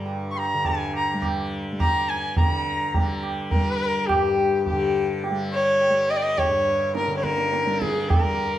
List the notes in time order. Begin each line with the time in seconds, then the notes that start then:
Already playing: G2 D3 G3
0.06 tabla tin
0.31 C#6
0.35 A#5, tabla na
0.54 D3
0.65 G#5, tabla tin, tabla ge
0.94 A#5, tabla na
1.14 G3
1.22 tabla na, tabla ge
1.72 G3
1.80 A#5, tabla na, tabla ge
2.08 G#5, tabla te
2.37 D3 A#5, tabla tin, tabla ge
2.94 G3, tabla tin, tabla ge
3.23 tabla na
3.51 G3 A#4, tabla tin, tabla ge
4.06 G4, tabla na, tabla ge
4.13 G2
4.66 G4, tabla tin, tabla ge
4.72 D3
5.24 tabla tin
5.30 G3
5.53 C#5
5.81 tabla tin
5.90 G3
6.10 D#5, tabla na
6.17 D5
6.22 D#5
6.38 C#5, tabla tin, tabla ge
6.49 G2
6.95 A#4, tabla te
7.08 D3, tabla te
7.17 C#5
7.24 A#4, tabla ke
7.38 tabla te
7.53 tabla te
7.66 G3, tabla te
7.82 G#4, tabla ke
7.95 tabla te
8.09 A#4, tabla tin, tabla ge
8.23 G3